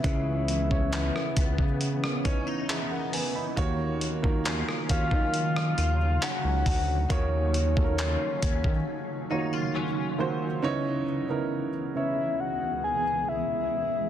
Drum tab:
HH |x-x-x-x-x-x-x-o-|x-x-x-x-x-x-x-o-|x-x-x-x---------|----------------|
CP |----x-------x---|----x-------x---|----x-----------|----------------|
SD |-----r---r------|-----r---r------|----------------|----------------|
BD |o--o--oo--o-----|o--o--oo------o-|o--o--oo--------|----------------|